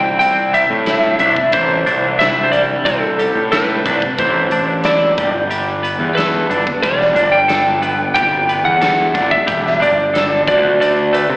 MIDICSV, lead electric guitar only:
0, 0, Header, 1, 2, 480
1, 0, Start_track
1, 0, Tempo, 662691
1, 151, Time_signature, 4, 2, 24, 8
1, 8233, End_track
2, 0, Start_track
2, 0, Title_t, "Lead electric guitar"
2, 0, Program_c, 0, 29
2, 0, Note_on_c, 0, 79, 96
2, 131, Note_off_c, 0, 79, 0
2, 139, Note_on_c, 0, 79, 110
2, 391, Note_on_c, 0, 76, 97
2, 392, Note_off_c, 0, 79, 0
2, 861, Note_off_c, 0, 76, 0
2, 870, Note_on_c, 0, 76, 86
2, 1093, Note_off_c, 0, 76, 0
2, 1107, Note_on_c, 0, 72, 84
2, 1586, Note_on_c, 0, 76, 98
2, 1603, Note_off_c, 0, 72, 0
2, 1763, Note_on_c, 0, 72, 69
2, 1783, Note_off_c, 0, 76, 0
2, 1822, Note_off_c, 0, 72, 0
2, 1822, Note_on_c, 0, 74, 87
2, 1888, Note_off_c, 0, 74, 0
2, 2065, Note_on_c, 0, 69, 94
2, 2545, Note_off_c, 0, 69, 0
2, 2548, Note_on_c, 0, 71, 75
2, 2790, Note_off_c, 0, 71, 0
2, 2798, Note_on_c, 0, 71, 76
2, 3033, Note_off_c, 0, 71, 0
2, 3035, Note_on_c, 0, 72, 74
2, 3514, Note_on_c, 0, 74, 71
2, 3527, Note_off_c, 0, 72, 0
2, 3846, Note_off_c, 0, 74, 0
2, 4454, Note_on_c, 0, 71, 79
2, 4943, Note_on_c, 0, 74, 93
2, 4956, Note_off_c, 0, 71, 0
2, 5300, Note_on_c, 0, 79, 83
2, 5317, Note_off_c, 0, 74, 0
2, 5890, Note_off_c, 0, 79, 0
2, 5899, Note_on_c, 0, 79, 101
2, 6263, Note_off_c, 0, 79, 0
2, 6266, Note_on_c, 0, 78, 102
2, 6744, Note_on_c, 0, 76, 92
2, 6762, Note_off_c, 0, 78, 0
2, 7110, Note_off_c, 0, 76, 0
2, 7113, Note_on_c, 0, 74, 84
2, 7583, Note_off_c, 0, 74, 0
2, 7592, Note_on_c, 0, 74, 84
2, 7823, Note_off_c, 0, 74, 0
2, 7832, Note_on_c, 0, 74, 92
2, 8072, Note_on_c, 0, 71, 86
2, 8077, Note_off_c, 0, 74, 0
2, 8233, Note_off_c, 0, 71, 0
2, 8233, End_track
0, 0, End_of_file